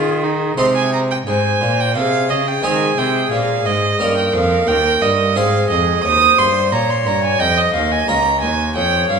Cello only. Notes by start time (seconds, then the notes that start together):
Already playing: D#3
0.58 C3
1.27 G#2
1.61 A#2
1.96 C3
2.30 C#3
2.64 D#3
2.98 C3
3.31 A#2
3.66 G#2
4.00 G2
4.34 F2
4.68 D#2
5.03 G2
5.37 G#2
5.71 F2
6.05 D#2
6.38 G2
6.72 A#2
7.06 G2
7.40 F2
7.74 D#2
8.09 C#2
8.43 D#2
8.76 F2
9.11 G2